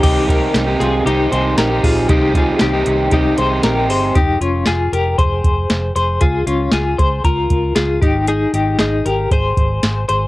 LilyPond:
<<
  \new Staff \with { instrumentName = "Clean electric guitar" } { \time 4/4 \key c \phrygian \tempo 4 = 116 <ees' g'>8 <g' bes'>4 <f' aes'>8 <ees' g'>8 <aes' c''>8 <g' bes'>8 <f' aes'>8 | <ees' g'>8 <f' aes'>8 <ees' g'>4 <ees' g'>8 <aes' c''>8 <g' bes'>8 <aes' c''>8 | <ees' g'>8 <des' f'>8 <f' aes'>8 <g' bes'>8 <aes' c''>4. <aes' c''>8 | <f' aes'>8 <des' f'>8 <f' aes'>8 <aes' c''>8 <f' bes'>4 <f' aes'>8 <ees' g'>8 |
<ees' aes'>8 <ees' g'>8 <ees' aes'>8 <g' bes'>8 <aes' c''>4. <aes' c''>8 | }
  \new Staff \with { instrumentName = "Overdriven electric guitar" } { \time 4/4 \key c \phrygian <c ees c' ees' g'>8 <ees c' ees' g'>8. <c ees c' ees' g'>8. <ees c' ees' g'>8 <ees c' ees' g'>8. <c' ees' g'>8. | <c ees c' ees' g'>8 <ees c' ees' g'>8. <c ees c' ees' g'>8. <ees c' ees' g'>8 <ees c' ees' g'>8. <c' ees' g'>8. | r1 | r1 |
r1 | }
  \new Staff \with { instrumentName = "Fingered electric bass" } { \clef bass \time 4/4 \key c \phrygian c,4 c,8 c,8 c,8 c,8 bes,,8 bes,,8 | c,4 c,8 c,8 c,8 c,8 bes,,8 g,,8 | f,,8 f,,8 f,,8 f,,8 f,,8 f,,8 f,,8 f,,8 | des,8 des,8 des,8 des,8 des,8 des,8 des,8 aes,,8~ |
aes,,8 aes,,8 aes,,8 aes,,8 aes,,8 aes,,8 aes,,8 aes,,8 | }
  \new DrumStaff \with { instrumentName = "Drums" } \drummode { \time 4/4 <cymc hh bd>8 <hh bd>8 <hh sn>8 <hh sn>8 hh8 hh8 <hh sn>8 <hho bd>8 | <hh bd>8 <hh bd>8 <hh sn>8 hh8 <hh bd>8 hh8 <hh sn>8 hho8 | <hh bd>8 hh8 <hh sn>8 hh8 <hh bd>8 <hh bd>8 <hh sn>8 hh8 | <hh bd>8 hh8 <hh sn>8 <hh bd>8 <hh bd>8 <hh bd>8 <hh sn>8 <hh bd>8 |
hh8 hh8 <hh sn>8 hh8 <hh bd>8 <hh bd>8 <hh sn>8 hh8 | }
>>